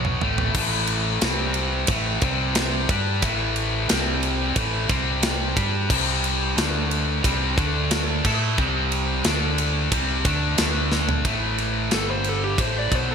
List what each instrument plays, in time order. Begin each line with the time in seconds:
Already playing: fingered electric bass B1, distorted electric guitar B2 F#3 B3
0.05 mid tom
0.21 fingered electric bass A1, distorted electric guitar A2 E3 A3, floor tom
0.38 floor tom
0.54 fingered electric bass A1, distorted electric guitar A2 E3 A3, kick, crash
0.87 ride
1.21 fingered electric bass C2, distorted electric guitar C3 G3 C4, snare, ride
1.54 ride
1.87 fingered electric bass A1, distorted electric guitar A2 E3 A3, kick, ride
2.21 fingered electric bass C2, distorted electric guitar C3 G3 C4, kick, ride
2.55 snare, ride
2.89 fingered electric bass G2, distorted electric guitar G3 D4 G4, kick, ride
3.22 fingered electric bass A1, distorted electric guitar A2 E3 A3, kick, ride
3.56 ride
3.89 fingered electric bass C2, distorted electric guitar C3 G3 C4, snare, ride
4.23 ride
4.56 fingered electric bass A1, distorted electric guitar A2 E3 A3, kick, ride
4.89 fingered electric bass C2, distorted electric guitar C3 G3 C4, kick, ride
5.23 snare, ride
5.56 fingered electric bass G2, distorted electric guitar G3 D4 G4, kick, ride
5.89 fingered electric bass C2, distorted electric guitar C3 G3 C4, kick, crash
6.24 ride
6.57 fingered electric bass D2, distorted electric guitar D3 A3 D4, snare, ride
6.91 ride
7.24 fingered electric bass C2, distorted electric guitar C3 G3 C4, kick, ride
7.57 fingered electric bass D2, distorted electric guitar D3 A3 D4, kick, ride
7.91 snare, ride
8.24 fingered electric bass A2, distorted electric guitar A3 E4 A4, kick, crash
8.58 fingered electric bass C2, distorted electric guitar C3 G3 C4, kick
8.92 ride
9.24 fingered electric bass D2, distorted electric guitar D3 A3 D4, snare, ride
9.58 ride
9.92 fingered electric bass C2, distorted electric guitar C3 G3 C4, kick, ride
10.25 fingered electric bass D2, distorted electric guitar D3 A3 D4, kick, ride
10.58 fingered electric bass D2, distorted electric guitar D3 A3 D4, snare, ride
10.92 snare
11.09 floor tom
11.25 fingered electric bass A1, distorted electric guitar A2 E3 A3, kick, ride
11.58 ride
11.91 fingered electric bass G1, distorted electric guitar G2 D3 G3, lead electric guitar A4, snare, ride
12.10 lead electric guitar C5
12.24 ride
12.29 lead electric guitar A4
12.44 lead electric guitar G4
12.58 fingered electric bass A1, distorted electric guitar A2 E3 A3, lead electric guitar C5, kick, ride
12.79 lead electric guitar D5
12.92 fingered electric bass B1, distorted electric guitar B2 F#3 B3, lead electric guitar C5, kick, ride
13.12 lead electric guitar A4